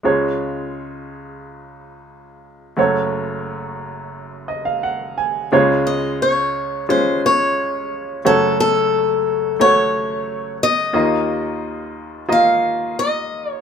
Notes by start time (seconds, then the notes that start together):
0.03 C#2 C#3 G#3 F4 C#5
2.77 F#1 F#2 A3 F#4 C#5
4.48 D#5
4.65 F5
4.83 F#5
5.18 G#5
5.52 C#2 C#3 G#3 F4 C#5
5.87 D#5
6.22 C#5
6.89 G#3 C#4 F4 C5
7.26 C#5
8.25 F#1 F#2 A3 F#4 A4 C#5
8.60 A4
9.60 A3 F#4 C#5
10.63 D#5
10.93 D#2 D#3 A#3 F4 D#5
12.29 A#3 F4 D#5 F5
12.99 D#5
13.51 C#5